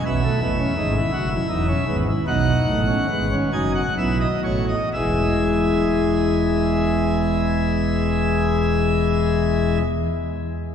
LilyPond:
<<
  \new Staff \with { instrumentName = "Pipe organ" } { \time 12/8 \key e \major \tempo 4. = 41 << { e''2. fis''4. gis''16 fis''16 e''16 dis''16 cis''16 dis''16 | <e gis e''>1. | } \\ { b16 a16 b16 cis'16 dis'16 e'16 fis'16 e'16 dis'16 cis'16 b16 e'16 dis'8. cis'16 b16 cis'16 dis'8 e'8 fis'8 | gis'1. | } >> }
  \new Staff \with { instrumentName = "Pipe organ" } { \clef bass \time 12/8 \key e \major <b,, b,>8 <a,, a,>8 <gis,, gis,>8 <fis,, fis,>8 <e,, e,>8 <gis,, gis,>8 <b,, b,>8 <a,, a,>8 <gis,, gis,>8 <fis,, fis,>8 <b,, b,>8 <a,, a,>8 | <e,, e,>1. | }
>>